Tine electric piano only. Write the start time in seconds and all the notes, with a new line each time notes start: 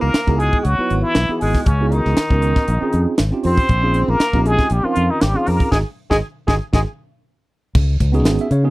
Already playing: D#4 E4 F#4 A#4
0.27 B3 D#4 E4 F#4 G#4
0.78 B3 D#4 E4 F#4 B4
1.29 B3 D#4 E4 F#4 G#4
1.80 B3 D#4 E4 F#4 G#4
2.31 B3 C#4 D#4 F#4 A#4
2.81 C4 C#4 D#4 F4 G#4
3.31 C4 C#4 D#4 F4 G4
3.82 C4 C#4 D#4 F4 G#4
4.33 C4 C#4 D#4 F4 G4
4.83 C4 C#4 D#4 F4 A#4
5.34 C4 C#4 D#4 F4 G#4
5.72 D#4 F#4 G#4
6.10 D#4 F#4 G#4
6.47 D#4 F#4 G#4
6.73 D#4 F#4 G#4
8.12 B3 C#4 D#4 F#4 G#4
8.41 E5
8.52 C#5
8.64 B3 C#4 D#4 F#4 G#4